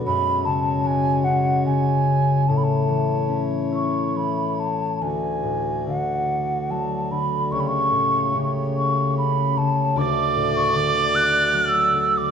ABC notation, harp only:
X:1
M:3/4
L:1/8
Q:1/4=74
K:Dlyd
V:1 name="Harp" clef=bass
F,, C, G, C C,2 | A,, E, C E E,2 | D,, A,, D,2 F, D, | C,, A,, C,2 C C, |
D,, A,, D,2 F, D, |]